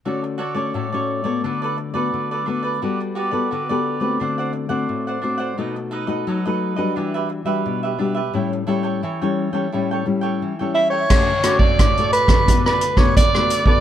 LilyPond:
<<
  \new Staff \with { instrumentName = "Soprano saxophone" } { \time 4/4 \key d \major \tempo 4 = 87 r1 | r1 | r1 | r2. r8 e''16 cis''16~ |
cis''8. d''8. b'8. b'8 cis''16 d''8. d''16 | }
  \new Staff \with { instrumentName = "Cavaquinho" } { \time 4/4 \key d \major <fis' a' cis'' d''>16 r16 <fis' a' cis'' d''>16 <a' cis'' d''>16 <fis' a' cis'' d''>16 <a' cis'' d''>8 <a' cis'' d''>16 <d' a' b' d''>16 <a' b' d''>16 r16 <a' b' d''>8 <a' b' d''>16 <d' a' b' d''>16 <a' b' d''>16 | <fis' g' b' d''>16 r16 <fis' g' b' d''>16 <g' b' d''>16 <fis' g' b' d''>16 <g' b' d''>8 <g' b' d''>16 <d' c'' d'' fis''>16 <c'' d'' fis''>16 r16 <c'' d'' fis''>8 <c'' d'' fis''>16 <d' c'' d'' fis''>16 <c'' d'' fis''>16 | <dis' a' b' dis''>16 r16 <dis' a' b' dis''>16 <a' b' dis''>16 <dis' a' b' dis''>16 <a' b' dis''>8 <a' b' dis''>16 <d' g' b' e''>16 <g' b' e''>16 r16 <g' b' e''>8 <g' b' e''>16 <d' g' b' e''>16 <g' b' e''>16 | <e' a' cis'' g''>16 r16 <e' a' cis'' g''>16 <a' cis'' g''>16 <e' a' cis'' g''>16 <a' cis'' g''>8 <a' cis'' g''>16 <e' a' cis'' g''>16 <a' cis'' g''>16 r16 <a' cis'' g''>8 <a' cis'' g''>16 <e' a' cis'' g''>16 <a' cis'' g''>16 |
<fis' a' cis'' d''>16 r16 <fis' a' cis'' d''>16 <a' cis'' d''>16 <fis' a' cis'' d''>16 <a' cis'' d''>8 <a' cis'' d''>16 <d' a' b' d''>16 <a' b' d''>16 r16 <a' b' d''>8 <a' b' d''>16 <d' a' b' d''>16 <a' b' d''>16 | }
  \new Staff \with { instrumentName = "Nylon-string guitar" } { \time 4/4 \key d \major << { <a cis' fis'>8 r16 <a cis' fis'>8 <a cis' fis'>8 <a b fis'>4 <a b fis'>8. <a b fis'>8 | <b fis' a'>8 r16 <b fis' a'>8 <b fis' a'>8 <a c' fis'>4 <a c' fis'>8. <a c' fis'>8 | <a dis' fis'>8. <a dis' fis'>8 <a dis' fis'>8 <g d' fis'>4 <g d' fis'>8. <g d' fis'>16 r16 | <g cis' e'>8 <g cis' e'>8 r16 <g cis' e'>8 <g cis' e'>16 <g cis' e'>8 <g cis' e'>8. <g cis' e'>8. |
<a cis' fis'>16 r16 <a cis' fis'>8. <a fis'>8. <a b fis'>8. <a b fis'>8 <a b fis'>8 <b fis' a'>16 | } \\ { d4 a,4 d4 d4 | g4 d4 d4 a,4 | b,4 fis4 e4 b,4 | a,4 e4 a,4 e4 |
d4 a,4 d4 d4 | } >> }
  \new DrumStaff \with { instrumentName = "Drums" } \drummode { \time 4/4 r4 r4 r4 r4 | r4 r4 r4 r4 | r4 r4 r4 r4 | r4 r4 r4 r4 |
<cymc bd ss>8 <hh ss>16 bd16 <hh bd ss>16 hh16 hh16 <hh bd ss>16 <hh bd>16 ss16 hh16 <bd ss>16 <hh bd>16 ss16 hh16 bd16 | }
>>